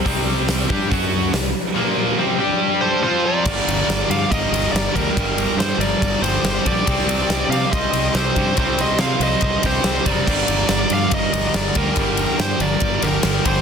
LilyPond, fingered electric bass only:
\new Staff \with { instrumentName = "Fingered electric bass" } { \clef bass \time 4/4 \key g \minor \tempo 4 = 141 c,4. g,8 fis,4 c,8 r8 | r1 | g,,8 g,,8 g,,8 g,8 g,,8 g,,8 g,,8 d,8 | g,,4 g,8 g,,8 g,,8 g,,8 g,,8 bes,,8 |
c,8 c,8 c,8 c8 c,8 c,8 c,8 g,8 | c,4 c8 c,8 c,8 c,8 c,8 fis,,8 | g,,8 g,,8 g,,8 g,8 g,,8 g,,8 g,,8 d,8 | g,,4 g,8 g,,8 g,,8 g,,8 g,,8 g,,8 | }